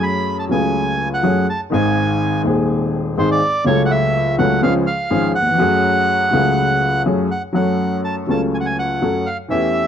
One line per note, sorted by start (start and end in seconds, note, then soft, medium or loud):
0.00 0.47 F#2 medium
0.00 0.47 F#3 medium
0.00 0.47 A3 medium
0.00 0.48 C#4 medium
0.00 0.48 G#4 medium
0.00 0.37 B5 medium
0.39 0.45 A5 medium
0.49 1.21 C#2 medium
0.49 1.20 C#3 medium
0.49 1.20 F#3 medium
0.49 1.20 A3 medium
0.49 1.21 C#4 medium
0.49 1.08 G#5 medium
0.53 1.22 G#4 medium
1.14 1.47 F#5 medium
1.23 1.44 F#2 medium
1.23 1.44 F#3 medium
1.23 1.44 A3 medium
1.23 1.45 C#4 medium
1.23 1.45 G#4 medium
1.50 1.60 A5 medium
1.70 2.42 G#1 medium
1.70 2.41 G#2 medium
1.70 2.40 D#3 medium
1.70 2.41 G#3 medium
1.70 2.42 C4 medium
1.70 2.42 G#4 medium
1.70 2.42 G#5 medium
2.43 3.14 D#1 medium
2.43 3.14 D#2 medium
2.43 3.13 D#3 medium
2.43 3.14 G#3 medium
2.43 3.14 C4 medium
2.47 3.15 G#4 medium
3.18 3.38 G#1 medium
3.18 3.38 G#2 medium
3.18 3.38 D#3 medium
3.18 3.38 G#3 medium
3.18 3.38 C4 medium
3.18 3.38 G#4 medium
3.18 3.30 C5 medium
3.31 3.65 D5 medium
3.64 4.35 C#2 medium
3.64 3.66 C#3 medium
3.64 4.35 C#3 medium
3.64 4.35 F#3 medium
3.64 4.35 A3 medium
3.64 4.36 C#4 medium
3.64 4.36 A4 medium
3.64 3.82 C#5 loud
3.85 3.91 F#5 medium
3.91 4.36 E5 medium
4.38 4.59 C#2 medium
4.38 4.59 C#3 medium
4.38 4.59 F#3 medium
4.38 4.59 A3 medium
4.38 4.59 C#4 medium
4.38 4.59 A4 medium
4.38 4.61 F#5 medium
4.63 4.83 C#2 medium
4.63 4.83 C#3 medium
4.63 4.83 F3 medium
4.63 4.83 G#3 medium
4.63 4.83 C#4 medium
4.63 4.83 G#4 medium
4.63 4.74 F5 loud
4.87 5.32 F5 loud
5.11 5.31 G#1 medium
5.11 5.31 G#2 medium
5.11 5.31 F3 medium
5.11 5.31 G#3 medium
5.11 5.32 C#4 medium
5.11 5.32 G#4 medium
5.35 7.02 F#5 loud
5.41 5.47 D#2 medium
5.47 5.53 E2 medium
5.54 5.60 F2 medium
5.59 6.29 F#2 medium
5.59 6.29 F#3 medium
5.59 6.29 A3 medium
5.59 6.29 C#4 medium
5.59 6.30 G#4 medium
6.31 7.03 C#2 medium
6.31 7.03 C#3 medium
6.31 7.02 F#3 medium
6.31 7.02 A3 medium
6.31 7.03 C#4 medium
6.35 7.04 G#4 medium
7.06 7.27 F#2 medium
7.06 7.27 F#3 medium
7.06 7.27 A3 medium
7.06 7.27 C#4 medium
7.06 7.27 G#4 medium
7.31 7.42 F#5 medium
7.53 8.25 F#2 medium
7.53 8.25 F#3 medium
7.53 8.24 A3 medium
7.53 8.25 C#4 medium
7.53 8.26 A4 medium
7.53 8.01 F#5 medium
8.04 8.15 A5 medium
8.27 8.98 C#2 medium
8.27 8.98 C#3 medium
8.27 8.98 F#3 medium
8.27 8.98 A3 medium
8.27 8.99 C#4 medium
8.27 8.99 A4 medium
8.27 8.41 A5 medium
8.54 8.57 G#5 medium
8.60 8.66 F#5 medium
8.66 8.77 G#5 medium
8.79 9.29 F#5 medium
9.02 9.23 F#2 medium
9.02 9.23 F#3 medium
9.02 9.23 A3 medium
9.02 9.23 C#4 medium
9.02 9.23 A4 medium
9.26 9.37 F5 medium
9.48 9.87 E2 medium
9.48 9.50 E3 medium
9.48 9.87 E3 medium
9.48 9.87 A3 medium
9.48 9.87 C#4 medium
9.48 9.87 G4 medium
9.48 9.87 E5 medium